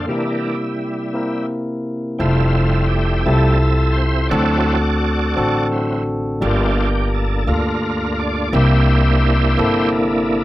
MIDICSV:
0, 0, Header, 1, 4, 480
1, 0, Start_track
1, 0, Key_signature, -1, "major"
1, 0, Tempo, 703400
1, 59, Time_signature, 6, 3, 24, 8
1, 7126, End_track
2, 0, Start_track
2, 0, Title_t, "Tonewheel organ"
2, 0, Program_c, 0, 16
2, 0, Note_on_c, 0, 65, 78
2, 56, Note_on_c, 0, 52, 49
2, 58, Note_on_c, 0, 58, 47
2, 62, Note_on_c, 0, 55, 48
2, 67, Note_on_c, 0, 62, 55
2, 71, Note_on_c, 0, 64, 70
2, 87, Note_off_c, 0, 65, 0
2, 377, Note_off_c, 0, 52, 0
2, 381, Note_off_c, 0, 58, 0
2, 383, Note_off_c, 0, 62, 0
2, 995, Note_off_c, 0, 55, 0
2, 1000, Note_off_c, 0, 64, 0
2, 1493, Note_on_c, 0, 55, 55
2, 1499, Note_on_c, 0, 57, 57
2, 1501, Note_on_c, 0, 60, 62
2, 1505, Note_on_c, 0, 65, 80
2, 1506, Note_on_c, 0, 76, 61
2, 1957, Note_off_c, 0, 65, 0
2, 1965, Note_on_c, 0, 67, 74
2, 2195, Note_off_c, 0, 60, 0
2, 2199, Note_off_c, 0, 57, 0
2, 2217, Note_off_c, 0, 55, 0
2, 2221, Note_off_c, 0, 67, 0
2, 2223, Note_on_c, 0, 69, 84
2, 2225, Note_on_c, 0, 55, 48
2, 2227, Note_on_c, 0, 57, 42
2, 2234, Note_on_c, 0, 60, 63
2, 2440, Note_off_c, 0, 55, 0
2, 2441, Note_off_c, 0, 57, 0
2, 2674, Note_on_c, 0, 72, 95
2, 2718, Note_off_c, 0, 69, 0
2, 2918, Note_off_c, 0, 76, 0
2, 2921, Note_off_c, 0, 60, 0
2, 2927, Note_on_c, 0, 74, 98
2, 2934, Note_on_c, 0, 54, 59
2, 2936, Note_off_c, 0, 72, 0
2, 2939, Note_on_c, 0, 64, 63
2, 2940, Note_on_c, 0, 60, 49
2, 2943, Note_on_c, 0, 66, 71
2, 2943, Note_on_c, 0, 69, 70
2, 3258, Note_off_c, 0, 54, 0
2, 3260, Note_off_c, 0, 64, 0
2, 3261, Note_off_c, 0, 60, 0
2, 3868, Note_off_c, 0, 74, 0
2, 3876, Note_off_c, 0, 66, 0
2, 3876, Note_off_c, 0, 69, 0
2, 3898, Note_on_c, 0, 54, 48
2, 3901, Note_on_c, 0, 64, 49
2, 3904, Note_on_c, 0, 60, 43
2, 4116, Note_off_c, 0, 54, 0
2, 4118, Note_off_c, 0, 64, 0
2, 4120, Note_off_c, 0, 60, 0
2, 4378, Note_on_c, 0, 69, 61
2, 4381, Note_on_c, 0, 58, 62
2, 4384, Note_on_c, 0, 65, 67
2, 4385, Note_on_c, 0, 62, 59
2, 4393, Note_on_c, 0, 67, 88
2, 4699, Note_off_c, 0, 69, 0
2, 4702, Note_off_c, 0, 65, 0
2, 4840, Note_off_c, 0, 67, 0
2, 4873, Note_on_c, 0, 69, 74
2, 5075, Note_off_c, 0, 58, 0
2, 5076, Note_off_c, 0, 62, 0
2, 5103, Note_on_c, 0, 62, 62
2, 5106, Note_on_c, 0, 65, 65
2, 5107, Note_on_c, 0, 70, 90
2, 5115, Note_off_c, 0, 69, 0
2, 5592, Note_on_c, 0, 74, 91
2, 5598, Note_off_c, 0, 70, 0
2, 5794, Note_off_c, 0, 62, 0
2, 5795, Note_off_c, 0, 65, 0
2, 5818, Note_on_c, 0, 58, 56
2, 5829, Note_on_c, 0, 76, 96
2, 5830, Note_on_c, 0, 62, 51
2, 5832, Note_on_c, 0, 72, 72
2, 5833, Note_off_c, 0, 74, 0
2, 5833, Note_on_c, 0, 64, 62
2, 5833, Note_on_c, 0, 67, 77
2, 6755, Note_off_c, 0, 76, 0
2, 6757, Note_off_c, 0, 67, 0
2, 6757, Note_off_c, 0, 72, 0
2, 7126, Note_off_c, 0, 58, 0
2, 7126, Note_off_c, 0, 62, 0
2, 7126, Note_off_c, 0, 64, 0
2, 7126, End_track
3, 0, Start_track
3, 0, Title_t, "Tine electric piano"
3, 0, Program_c, 1, 4
3, 0, Control_c, 1, 64, 127
3, 0, Note_on_c, 1, 58, 56
3, 0, Note_on_c, 1, 62, 53
3, 0, Note_on_c, 1, 65, 52
3, 0, Note_on_c, 1, 69, 64
3, 49, Note_off_c, 1, 58, 0
3, 49, Note_on_c, 1, 58, 54
3, 56, Note_on_c, 1, 60, 55
3, 58, Note_on_c, 1, 64, 51
3, 59, Note_on_c, 1, 48, 49
3, 61, Note_on_c, 1, 67, 66
3, 67, Control_c, 1, 64, 0
3, 70, Note_off_c, 1, 69, 0
3, 72, Note_off_c, 1, 62, 0
3, 73, Note_off_c, 1, 65, 0
3, 172, Control_c, 1, 64, 127
3, 617, Note_off_c, 1, 58, 0
3, 621, Note_off_c, 1, 60, 0
3, 622, Note_off_c, 1, 64, 0
3, 623, Note_off_c, 1, 67, 0
3, 753, Note_off_c, 1, 48, 0
3, 773, Note_on_c, 1, 58, 60
3, 777, Note_on_c, 1, 60, 59
3, 780, Note_on_c, 1, 64, 59
3, 787, Note_on_c, 1, 70, 72
3, 1340, Note_off_c, 1, 58, 0
3, 1342, Note_off_c, 1, 60, 0
3, 1343, Note_off_c, 1, 64, 0
3, 1347, Note_off_c, 1, 70, 0
3, 1494, Note_on_c, 1, 60, 67
3, 1498, Note_on_c, 1, 64, 58
3, 1500, Note_on_c, 1, 65, 62
3, 1506, Note_on_c, 1, 69, 72
3, 1511, Control_c, 1, 64, 0
3, 1637, Control_c, 1, 64, 127
3, 2060, Note_off_c, 1, 60, 0
3, 2062, Note_off_c, 1, 64, 0
3, 2063, Note_off_c, 1, 65, 0
3, 2067, Note_off_c, 1, 69, 0
3, 2220, Note_on_c, 1, 60, 64
3, 2223, Note_on_c, 1, 64, 60
3, 2226, Note_on_c, 1, 65, 60
3, 2230, Note_on_c, 1, 67, 57
3, 2271, Note_off_c, 1, 67, 0
3, 2273, Note_on_c, 1, 69, 71
3, 2784, Note_off_c, 1, 60, 0
3, 2785, Note_off_c, 1, 64, 0
3, 2787, Note_off_c, 1, 65, 0
3, 2810, Note_off_c, 1, 69, 0
3, 2936, Note_on_c, 1, 60, 64
3, 2942, Note_on_c, 1, 62, 57
3, 2943, Note_on_c, 1, 66, 61
3, 2946, Note_on_c, 1, 50, 52
3, 2950, Note_on_c, 1, 69, 76
3, 2952, Control_c, 1, 64, 0
3, 3064, Control_c, 1, 64, 127
3, 3501, Note_off_c, 1, 60, 0
3, 3505, Note_off_c, 1, 62, 0
3, 3505, Note_off_c, 1, 66, 0
3, 3509, Note_off_c, 1, 69, 0
3, 3637, Note_off_c, 1, 50, 0
3, 3658, Note_on_c, 1, 60, 75
3, 3663, Note_on_c, 1, 62, 69
3, 3663, Note_on_c, 1, 66, 74
3, 3671, Note_on_c, 1, 69, 84
3, 4222, Note_off_c, 1, 60, 0
3, 4225, Note_off_c, 1, 62, 0
3, 4225, Note_off_c, 1, 66, 0
3, 4229, Note_off_c, 1, 69, 0
3, 4367, Note_on_c, 1, 57, 54
3, 4372, Note_on_c, 1, 43, 57
3, 4374, Note_on_c, 1, 62, 61
3, 4376, Note_on_c, 1, 65, 60
3, 4380, Note_on_c, 1, 67, 74
3, 4392, Control_c, 1, 64, 0
3, 4414, Note_on_c, 1, 58, 69
3, 4419, Note_off_c, 1, 57, 0
3, 4509, Control_c, 1, 64, 127
3, 4940, Note_off_c, 1, 62, 0
3, 4941, Note_off_c, 1, 65, 0
3, 4943, Note_off_c, 1, 67, 0
3, 4960, Note_off_c, 1, 58, 0
3, 5069, Note_off_c, 1, 43, 0
3, 5097, Note_on_c, 1, 58, 62
3, 5102, Note_on_c, 1, 62, 58
3, 5105, Note_on_c, 1, 65, 58
3, 5112, Note_on_c, 1, 69, 71
3, 5661, Note_off_c, 1, 58, 0
3, 5663, Note_off_c, 1, 62, 0
3, 5664, Note_off_c, 1, 65, 0
3, 5668, Note_off_c, 1, 69, 0
3, 5818, Note_on_c, 1, 58, 68
3, 5819, Note_on_c, 1, 60, 67
3, 5821, Note_on_c, 1, 48, 56
3, 5824, Note_on_c, 1, 64, 65
3, 5828, Note_on_c, 1, 67, 80
3, 5829, Control_c, 1, 64, 0
3, 5967, Control_c, 1, 64, 127
3, 6380, Note_off_c, 1, 58, 0
3, 6381, Note_off_c, 1, 60, 0
3, 6383, Note_off_c, 1, 64, 0
3, 6385, Note_off_c, 1, 67, 0
3, 6512, Note_off_c, 1, 48, 0
3, 6535, Note_on_c, 1, 58, 73
3, 6540, Note_on_c, 1, 60, 67
3, 6543, Note_on_c, 1, 64, 72
3, 6546, Note_on_c, 1, 69, 83
3, 7098, Note_off_c, 1, 58, 0
3, 7100, Note_off_c, 1, 60, 0
3, 7102, Note_off_c, 1, 64, 0
3, 7103, Note_off_c, 1, 69, 0
3, 7126, End_track
4, 0, Start_track
4, 0, Title_t, "Upright bass"
4, 0, Program_c, 2, 32
4, 1500, Note_on_c, 2, 29, 98
4, 2195, Note_off_c, 2, 29, 0
4, 2226, Note_on_c, 2, 36, 87
4, 2918, Note_off_c, 2, 36, 0
4, 2943, Note_on_c, 2, 38, 109
4, 3636, Note_off_c, 2, 38, 0
4, 3667, Note_on_c, 2, 33, 83
4, 4357, Note_off_c, 2, 33, 0
4, 4380, Note_on_c, 2, 31, 110
4, 5073, Note_off_c, 2, 31, 0
4, 5100, Note_on_c, 2, 38, 93
4, 5792, Note_off_c, 2, 38, 0
4, 5821, Note_on_c, 2, 36, 111
4, 6512, Note_off_c, 2, 36, 0
4, 6540, Note_on_c, 2, 31, 91
4, 7126, Note_off_c, 2, 31, 0
4, 7126, End_track
0, 0, End_of_file